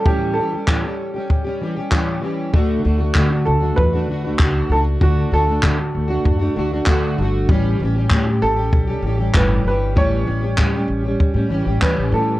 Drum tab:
CP |--x---x-|--x---x-|--x---x-|--x---x-|
BD |o-o-o-o-|o-o-o-o-|o-o-o-o-|o-o-o-o-|

CP |--x---x-|
BD |o-o-o-o-|